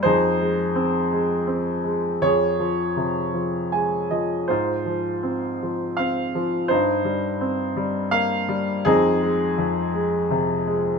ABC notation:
X:1
M:6/8
L:1/8
Q:3/8=55
K:Fm
V:1 name="Grand piano"
[EAc]6 | [Ad]4 a e | [EFc]4 f z | [Ec]4 f z |
[CEA]6 |]
V:2 name="Grand piano" clef=bass
F,, A, C A, C A, | F,, F, C, F, A, F, | A,, F, C F, C F, | G,, G, C G, B, G, |
F,, A, F,, A, C, A, |]